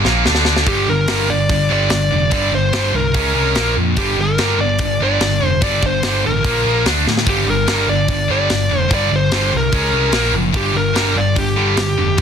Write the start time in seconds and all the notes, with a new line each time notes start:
0.05 A#1 A#2 F3 A#3, snare
0.25 D2 D3 A3 D4, snare
0.35 snare
0.45 snare
0.56 snare
0.66 G1 G2 D3 G3 G4, kick, open hi-hat
0.88 G1 G2 D3 A#4
1.08 G1 G2 D3 G3, snare, open hi-hat
1.29 G1 G2 D3 D5
1.49 G1 G2 D3, kick, open hi-hat
1.69 G1 G2 D3 G3 D5
1.90 G1 G2 D3, snare, open hi-hat
2.11 F1 G2 D3
2.30 G1 G2 D3 G3 D5, kick, open hi-hat
2.53 G1 G2 D3 C5
2.73 G1 G2 D3 G3, snare, open hi-hat
2.93 C2 G2 D3 A#4
3.14 C#2 C#3 G#3 C#4, kick, open hi-hat
3.34 C2 C#3 G#3 C#4
3.55 A#1 A#2 F3 A#3, snare, open hi-hat
3.76 F2 A#2 F3
3.97 G1 G2 D3 G3 G4, kick, open hi-hat
4.18 G1 G2 D3 A#4
4.38 G1 G2 D3 G3, snare, open hi-hat
4.59 G1 G2 D3 D5
4.79 G1 G2 D3, kick, open hi-hat
5.00 G1 G2 D3 G3 D5
5.21 G1 G2 D3, snare, open hi-hat
5.40 F1 G2 D3
5.46 C5
5.61 G1 G2 D3 G3 D5, kick, open hi-hat
5.82 G1 G2 D3 C5, kick
6.03 G1 G2 D3 G3, snare, open hi-hat
6.25 A1 G2 D3 A#4
6.44 A#1 A#2 F3 A#3, kick, open hi-hat
6.65 A#1 A#2 F3 A#3
6.85 D2 D3 A3 D4, snare, open hi-hat
7.06 A2 D3 A3, snare
7.17 snare
7.26 G1 G2 D3 G3 G4, kick, open hi-hat
7.46 G1 G2 D3 A#4
7.66 G1 G2 D3 G3, snare, open hi-hat
7.88 G1 G2 D3 D5
8.08 G1 G2 D3, kick, open hi-hat
8.28 G1 G2 D3 G3 D5
8.49 G1 G2 D3, snare, open hi-hat
8.69 F1 G2 D3
8.79 C5
8.88 G1 G2 D3 G3, kick, open hi-hat
8.94 D5
9.10 G1 G2 D3
9.16 C5
9.32 G1 G2 D3 G3, snare, open hi-hat
9.51 C2 G2 D3
9.57 A#4
9.72 C#2 C#3 G#3 C#4, kick, open hi-hat
9.93 C2 C#3 G#3 C#4
10.11 A#1 A#2 F3 A#3, snare, open hi-hat
10.32 F#1 A#2 F3
10.53 G1 G2 D3 G3 G4, kick, open hi-hat
10.73 G1 G2 D3 A#4
10.93 G1 G2 D3 G3, snare, open hi-hat
11.15 G1 G2 D3 D5
11.35 G1 G2 D3 G4, kick, open hi-hat
11.56 G1 G2 D3 G3
11.77 G1 G2 D3, snare, open hi-hat
11.98 F1 G2 D3
12.17 G1 G2 D3, kick, open hi-hat